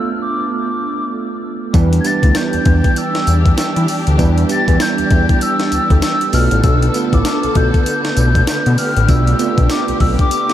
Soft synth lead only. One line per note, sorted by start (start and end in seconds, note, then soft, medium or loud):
0.00 0.17 E6 loud
0.22 0.50 D6 medium
0.53 1.40 D6 medium
2.00 2.08 G#6 medium
2.06 2.36 A6 loud
2.37 2.99 G6 loud
2.98 3.58 E6 loud
3.59 4.04 E6 medium
4.51 4.83 A6 loud
4.82 5.44 G6 loud
5.42 6.03 E6 loud
6.04 6.36 E6 loud
6.34 6.65 F6 loud
6.64 7.06 E6 loud
7.06 7.15 E6 medium
7.14 7.58 D6 medium
7.56 8.78 G6 loud
8.79 9.11 F6 loud
9.09 9.73 E6 loud
9.71 10.00 D6 medium
10.01 10.09 E6 medium
10.21 10.53 D6 medium